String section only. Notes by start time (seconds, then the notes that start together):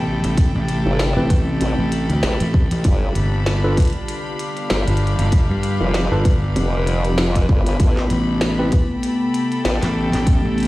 Already playing: A4 G5 B5
2.85 D4
3.09 G4
3.54 F5
8.27 A4
8.75 G5